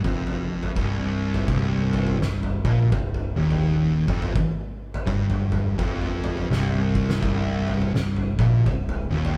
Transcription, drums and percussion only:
0.04 kick loud
0.04 floor tom medium
0.27 floor tom medium
0.63 floor tom medium
0.76 kick loud
1.34 floor tom medium
1.48 kick loud
1.48 floor tom medium
1.93 floor tom medium
2.07 floor tom medium
2.22 snare medium
2.43 floor tom medium
2.65 kick medium
2.65 floor tom medium
2.92 kick loud
2.92 floor tom medium
3.14 floor tom medium
3.51 floor tom medium
4.08 kick loud
4.22 floor tom medium
4.35 kick loud
4.35 floor tom medium
4.94 floor tom medium
5.07 kick loud
5.30 floor tom medium
5.30 mid tom medium
5.52 floor tom medium
5.52 mid tom medium
5.79 kick loud
5.79 floor tom medium
6.01 floor tom medium
6.24 floor tom medium
6.37 floor tom medium
6.52 snare medium
6.95 kick loud
7.10 snare medium
7.23 kick loud
7.23 floor tom medium
7.67 floor tom medium
7.82 floor tom medium
7.96 snare medium
8.16 floor tom medium
8.39 kick loud
8.39 floor tom medium
8.66 kick medium
8.66 floor tom medium
8.89 floor tom medium
9.25 floor tom medium

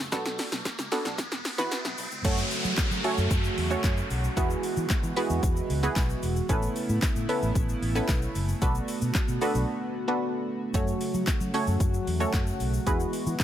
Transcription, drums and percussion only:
0.12 kick loud
0.12 snare loud
0.12 closed hi-hat medium
0.12 shaker medium
0.25 snare loud
0.25 shaker medium
0.39 snare loud
0.39 open hi-hat medium
0.39 shaker medium
0.52 snare loud
0.52 shaker medium
0.65 kick loud
0.65 snare loud
0.65 closed hi-hat medium
0.65 shaker medium
0.79 snare loud
0.79 shaker medium
0.92 snare loud
0.92 open hi-hat medium
0.92 shaker soft
0.92 shaker medium
1.05 snare loud
1.05 shaker soft
1.05 shaker medium
1.18 kick loud
1.18 snare loud
1.18 closed hi-hat medium
1.18 shaker medium
1.32 snare loud
1.32 shaker soft
1.32 shaker medium
1.45 snare loud
1.45 open hi-hat medium
1.45 shaker medium
1.58 snare loud
1.58 shaker medium
1.71 snare loud
1.71 closed hi-hat medium
1.71 shaker medium
1.85 snare loud
1.85 shaker soft
1.98 open hi-hat medium
1.98 shaker medium
2.11 shaker soft
2.11 shaker medium
2.25 kick loud
2.25 closed hi-hat medium
2.25 crash loud
2.25 shaker medium
2.38 shaker medium
2.51 open hi-hat medium
2.51 shaker medium
2.64 shaker medium
2.77 kick loud
2.77 snare medium
2.77 clap loud
2.77 closed hi-hat medium
2.77 shaker medium
2.91 shaker medium
3.04 open hi-hat medium
3.04 shaker medium
3.18 shaker soft
3.18 shaker medium
3.31 kick loud
3.31 closed hi-hat medium
3.31 shaker medium
3.44 shaker soft
3.44 shaker medium
3.58 open hi-hat medium
3.58 shaker medium
3.71 shaker medium
3.84 kick loud
3.84 snare loud
3.84 clap loud
3.84 closed hi-hat medium
3.84 shaker medium
3.97 shaker soft
4.10 open hi-hat medium
4.10 shaker medium
4.24 shaker medium
4.24 shaker soft
4.37 kick loud
4.37 closed hi-hat medium
4.37 shaker medium
4.50 shaker medium
4.63 open hi-hat medium
4.63 shaker medium
4.77 shaker medium
4.90 kick loud
4.90 snare medium
4.90 clap loud
4.90 closed hi-hat medium
4.90 shaker medium
5.03 shaker medium
5.16 open hi-hat medium
5.16 shaker medium
5.30 shaker medium
5.30 shaker soft
5.43 kick loud
5.43 closed hi-hat medium
5.43 shaker medium
5.57 shaker soft
5.57 shaker medium
5.70 open hi-hat medium
5.70 shaker medium
5.83 shaker medium
5.96 kick loud
5.96 snare loud
5.96 clap loud
5.96 closed hi-hat medium
5.96 shaker medium
6.09 shaker soft
6.23 open hi-hat medium
6.23 shaker medium
6.36 shaker soft
6.36 shaker medium
6.49 kick loud
6.49 closed hi-hat medium
6.49 shaker medium
6.62 shaker medium
6.76 open hi-hat medium
6.76 shaker medium
6.89 shaker medium
7.02 kick loud
7.02 snare medium
7.02 clap loud
7.02 closed hi-hat medium
7.02 shaker medium
7.16 shaker medium
7.29 open hi-hat medium
7.29 shaker medium
7.42 shaker soft
7.42 shaker medium
7.55 kick loud
7.55 closed hi-hat medium
7.55 shaker medium
7.69 shaker soft
7.69 shaker medium
7.83 open hi-hat medium
7.83 shaker medium
7.95 shaker medium
8.09 kick loud
8.09 snare loud
8.09 clap loud
8.09 closed hi-hat medium
8.09 shaker medium
8.22 shaker soft
8.22 shaker medium
8.35 open hi-hat medium
8.35 shaker medium
8.49 shaker soft
8.49 shaker medium
8.62 kick loud
8.62 closed hi-hat medium
8.62 shaker medium
8.75 shaker medium
8.88 open hi-hat medium
8.88 shaker medium
9.01 shaker medium
9.15 kick loud
9.15 snare medium
9.15 clap loud
9.15 closed hi-hat medium
9.15 shaker medium
9.28 shaker medium
9.41 open hi-hat medium
9.41 shaker soft
9.41 shaker medium
9.55 shaker soft
9.55 shaker medium
10.74 kick loud
10.74 closed hi-hat medium
10.74 shaker medium
10.87 shaker medium
10.87 shaker soft
11.01 open hi-hat medium
11.01 shaker medium
11.14 shaker medium
11.27 kick loud
11.27 snare medium
11.27 clap loud
11.27 closed hi-hat medium
11.27 shaker medium
11.41 shaker medium
11.54 open hi-hat medium
11.54 shaker medium
11.67 shaker soft
11.67 shaker medium
11.80 kick loud
11.80 closed hi-hat medium
11.80 shaker medium
11.94 shaker soft
11.94 shaker medium
12.07 open hi-hat medium
12.07 shaker medium
12.20 shaker medium
12.33 kick loud
12.33 snare loud
12.33 clap loud
12.33 closed hi-hat medium
12.33 shaker medium
12.47 shaker soft
12.60 open hi-hat medium
12.60 shaker medium
12.74 shaker soft
12.74 shaker medium
12.87 kick loud
12.87 closed hi-hat medium
12.87 shaker medium
13.00 shaker medium
13.13 open hi-hat medium
13.13 shaker medium
13.27 shaker medium
13.40 kick loud
13.40 snare medium
13.40 clap loud
13.40 closed hi-hat medium
13.40 shaker medium

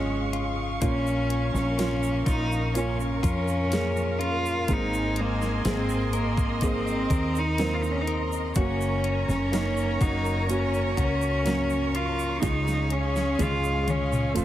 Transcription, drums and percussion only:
0.33 closed hi-hat medium
0.82 kick loud
0.82 closed hi-hat loud
0.82 shaker medium
1.07 shaker soft
1.30 closed hi-hat medium
1.55 snare soft
1.55 shaker soft
1.79 snare loud
1.79 closed hi-hat medium
1.79 shaker medium
2.03 shaker soft
2.26 kick medium
2.26 closed hi-hat medium
2.26 shaker soft
2.52 shaker soft
2.75 closed hi-hat medium
2.75 shaker medium
3.00 shaker soft
3.23 kick medium
3.23 closed hi-hat medium
3.23 shaker soft
3.48 shaker soft
3.72 snare medium
3.72 closed hi-hat medium
3.72 shaker medium
3.96 shaker soft
4.21 closed hi-hat medium
4.46 shaker soft
4.68 kick loud
4.68 closed hi-hat loud
4.68 shaker medium
4.94 shaker medium
5.16 closed hi-hat medium
5.42 snare soft
5.42 shaker soft
5.65 snare loud
5.65 closed hi-hat medium
5.65 shaker medium
5.89 shaker soft
6.13 closed hi-hat medium
6.13 shaker soft
6.37 kick loud
6.37 shaker soft
6.61 kick loud
6.61 closed hi-hat medium
6.61 shaker medium
6.87 shaker soft
7.10 kick medium
7.10 closed hi-hat medium
7.10 shaker soft
7.35 shaker soft
7.58 snare loud
7.58 closed hi-hat medium
7.58 shaker medium
7.83 shaker soft
8.07 closed hi-hat medium
8.32 shaker soft
8.55 kick loud
8.55 closed hi-hat loud
8.55 shaker medium
8.81 shaker medium
9.04 closed hi-hat medium
9.29 snare soft
9.29 shaker soft
9.53 snare loud
9.53 closed hi-hat medium
9.53 shaker medium
9.77 shaker soft
10.01 kick medium
10.01 closed hi-hat medium
10.01 shaker soft
10.26 shaker soft
10.49 closed hi-hat loud
10.49 shaker medium
10.74 shaker soft
10.97 kick medium
10.97 closed hi-hat medium
10.97 shaker soft
11.22 shaker soft
11.46 snare loud
11.46 closed hi-hat medium
11.46 shaker medium
11.70 shaker soft
11.95 closed hi-hat medium
12.19 shaker medium
12.42 kick loud
12.42 snare medium
12.42 closed hi-hat loud
12.42 shaker medium
12.68 snare medium
12.68 shaker medium
12.90 closed hi-hat medium
13.16 snare medium
13.16 shaker soft
13.39 closed hi-hat medium
13.39 high tom medium
13.39 shaker medium
13.64 shaker soft
13.88 closed hi-hat medium
13.88 high tom medium
13.88 shaker soft
14.12 mid tom medium
14.12 shaker soft
14.36 closed hi-hat loud
14.36 shaker medium

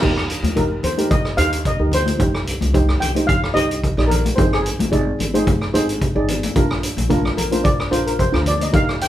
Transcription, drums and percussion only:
0.03 kick loud
0.03 crash medium
0.17 cross-stick medium
0.30 closed hi-hat medium
0.44 closed hi-hat medium
0.44 high conga medium
0.56 kick medium
0.56 closed hi-hat medium
0.83 closed hi-hat medium
0.83 low conga medium
0.98 closed hi-hat medium
0.98 high conga medium
1.11 kick loud
1.11 closed hi-hat medium
1.25 cross-stick medium
1.38 closed hi-hat medium
1.53 closed hi-hat medium
1.65 kick medium
1.65 closed hi-hat medium
1.92 closed hi-hat medium
1.92 low conga medium
2.06 closed hi-hat medium
2.06 high conga medium
2.20 kick loud
2.20 closed hi-hat medium
2.35 cross-stick medium
2.47 closed hi-hat medium
2.61 closed hi-hat medium
2.61 high conga medium
2.74 kick medium
2.74 closed hi-hat medium
2.89 cross-stick medium
3.01 closed hi-hat medium
3.01 low conga medium
3.15 closed hi-hat medium
3.15 high conga medium
3.29 kick loud
3.29 closed hi-hat medium
3.44 cross-stick medium
3.56 closed hi-hat medium
3.71 closed hi-hat medium
3.84 kick medium
3.84 closed hi-hat medium
3.98 cross-stick medium
4.10 closed hi-hat medium
4.10 low conga medium
4.25 closed hi-hat medium
4.25 high conga medium
4.38 kick loud
4.38 closed hi-hat medium
4.53 cross-stick medium
4.66 closed hi-hat medium
4.80 closed hi-hat medium
4.80 high conga medium
4.93 kick medium
4.93 closed hi-hat medium
5.20 closed hi-hat medium
5.20 low conga medium
5.34 closed hi-hat medium
5.34 high conga medium
5.47 kick loud
5.47 closed hi-hat medium
5.61 cross-stick medium
5.75 closed hi-hat medium
5.89 closed hi-hat medium
6.01 kick medium
6.01 closed hi-hat medium
6.28 closed hi-hat medium
6.28 low conga medium
6.43 closed hi-hat medium
6.43 high conga medium
6.56 kick loud
6.56 closed hi-hat medium
6.71 cross-stick medium
6.83 closed hi-hat medium
6.97 closed hi-hat medium
6.97 high conga medium
7.10 kick medium
7.10 closed hi-hat medium
7.10 high conga medium
7.25 cross-stick medium
7.37 closed hi-hat medium
7.37 low conga medium
7.52 closed hi-hat medium
7.52 high conga medium
7.65 kick loud
7.65 closed hi-hat medium
7.80 cross-stick medium
7.92 closed hi-hat medium
8.07 closed hi-hat medium
8.19 kick medium
8.19 closed hi-hat medium
8.19 low conga medium
8.34 cross-stick medium
8.46 closed hi-hat medium
8.46 low conga medium
8.60 closed hi-hat medium
8.60 high conga medium
8.74 kick loud
8.74 closed hi-hat medium
8.89 cross-stick medium
9.01 closed hi-hat medium

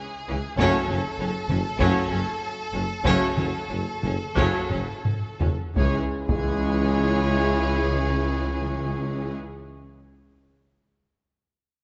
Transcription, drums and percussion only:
0.59 taiko medium
0.89 taiko mid medium
1.49 taiko mid medium
1.80 taiko medium
3.05 taiko loud
3.37 taiko mid medium
4.03 taiko mid medium
4.37 taiko medium
4.70 taiko low-mid medium
5.05 taiko low-mid loud
5.41 taiko low loud
5.76 taiko loud
6.29 taiko loud

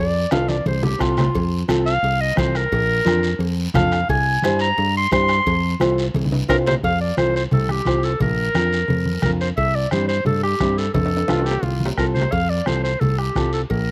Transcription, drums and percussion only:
0.31 bombo rim medium
0.31 cowbell medium
0.31 high conga medium
0.31 high timbale loud
0.31 short guiro medium
0.48 high conga medium
0.48 high timbale medium
0.48 short guiro medium
0.66 cowbell medium
0.66 high conga medium
0.66 long guiro medium
0.83 low conga loud
1.00 bombo low medium
1.00 bombo rim medium
1.00 cowbell medium
1.00 low timbale medium
1.00 short guiro medium
1.17 bombo rim medium
1.17 low conga medium
1.17 low timbale medium
1.17 short guiro medium
1.35 bombo low medium
1.35 cowbell loud
1.35 high conga soft
1.35 long guiro medium
1.69 bombo rim medium
1.69 cowbell medium
1.69 high conga medium
1.69 short guiro medium
1.86 short guiro medium
2.03 cowbell medium
2.03 high conga soft
2.03 long guiro medium
2.37 bombo low medium
2.37 bombo rim medium
2.37 cowbell medium
2.37 high conga medium
2.37 short guiro medium
2.55 bombo rim medium
2.55 short guiro medium
2.72 bombo low medium
2.72 cowbell loud
2.72 high conga soft
2.72 long guiro medium
3.06 bombo rim medium
3.06 cowbell medium
3.06 high conga medium
3.06 short guiro medium
3.23 short guiro medium
3.40 cowbell medium
3.40 high conga soft
3.40 long guiro medium
3.74 bombo low medium
3.74 bombo rim medium
3.74 cowbell medium
3.74 high conga medium
3.74 low conga loud
3.74 low timbale medium
3.74 short guiro medium
3.92 bombo rim medium
3.92 short guiro medium
4.09 bombo low medium
4.09 cowbell loud
4.09 high conga soft
4.09 long guiro medium
4.42 bombo rim medium
4.42 cowbell medium
4.42 high conga medium
4.42 short guiro medium
4.59 short guiro medium
4.78 cowbell medium
4.78 high conga soft
4.78 long guiro medium
5.11 bombo low medium
5.11 bombo rim medium
5.11 cowbell medium
5.11 high conga medium
5.11 short guiro medium
5.28 bombo rim medium
5.28 short guiro medium
5.46 bombo low medium
5.46 cowbell loud
5.46 high conga soft
5.46 long guiro medium
5.80 bombo rim medium
5.80 cowbell medium
5.80 high conga medium
5.80 short guiro medium
5.98 short guiro medium
6.14 cowbell medium
6.14 high conga medium
6.14 long guiro medium
6.25 low conga medium
6.32 high timbale medium
6.49 bombo low medium
6.49 bombo rim medium
6.49 cowbell medium
6.49 high timbale medium
6.49 short guiro medium
6.66 low timbale loud
6.66 short guiro medium
6.71 low conga medium
6.83 bombo low medium
6.83 cowbell loud
6.83 long guiro medium
7.17 bombo rim medium
7.17 high conga medium
7.17 short guiro medium
7.36 short guiro medium
7.51 cowbell medium
7.51 low conga medium
7.51 long guiro medium
7.68 bombo rim medium
7.68 high conga medium
7.85 bombo low medium
7.85 bombo rim medium
7.85 high conga medium
7.85 low timbale medium
7.85 short guiro medium
8.03 short guiro medium
8.20 bombo low medium
8.20 cowbell medium
8.20 low conga medium
8.20 long guiro medium
8.54 bombo rim medium
8.54 high conga medium
8.54 short guiro medium
8.73 short guiro medium
8.88 cowbell medium
8.88 low conga medium
8.88 long guiro medium
9.06 high conga medium
9.22 bombo low medium
9.22 bombo rim medium
9.22 high conga medium
9.22 low conga medium
9.22 short guiro medium
9.41 short guiro medium
9.57 bombo low medium
9.57 cowbell loud
9.57 long guiro medium
9.91 bombo rim medium
9.91 high conga medium
9.91 short guiro medium
10.09 short guiro medium
10.26 cowbell medium
10.26 low conga medium
10.26 long guiro medium
10.43 bombo rim medium
10.60 bombo low medium
10.60 bombo rim medium
10.60 high conga medium
10.60 low timbale medium
10.60 short guiro medium
10.78 short guiro medium
10.94 bombo low medium
10.94 cowbell medium
10.94 low conga medium
10.94 high timbale medium
10.94 long guiro medium
11.06 high timbale medium
11.17 high timbale medium
11.28 bombo rim medium
11.28 high conga medium
11.28 high timbale medium
11.28 short guiro medium
11.39 high timbale medium
11.46 short guiro medium
11.51 low timbale medium
11.63 cowbell medium
11.63 high conga medium
11.63 long guiro medium
11.80 high conga medium
11.86 low timbale loud
11.98 bombo low medium
11.98 bombo rim medium
11.98 short guiro medium
12.15 low conga medium
12.15 short guiro medium
12.22 low timbale medium
12.32 bombo low medium
12.32 cowbell loud
12.32 long guiro medium
12.66 bombo rim medium
12.66 high conga medium
12.66 short guiro medium
12.85 short guiro medium
13.01 cowbell medium
13.01 low conga medium
13.01 long guiro medium
13.19 bombo rim medium
13.35 bombo low medium
13.35 bombo rim medium
13.35 high conga medium
13.35 low timbale medium
13.35 short guiro medium
13.53 short guiro medium
13.70 bombo low medium
13.70 cowbell medium
13.70 long guiro medium

